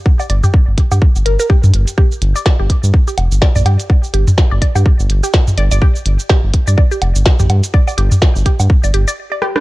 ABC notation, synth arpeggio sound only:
X:1
M:4/4
L:1/16
Q:"Swing 16ths" 1/4=125
K:Gm
V:1 name="Synth arpeggio sound"
z d d G z3 G z2 B B G z3 | G z2 d d G z3 G z2 d d G z | z2 G z2 d d G z3 G z2 d d | G z3 G z2 d d G z3 G z2 |
d d G z3 G z2 d G d z d G D |]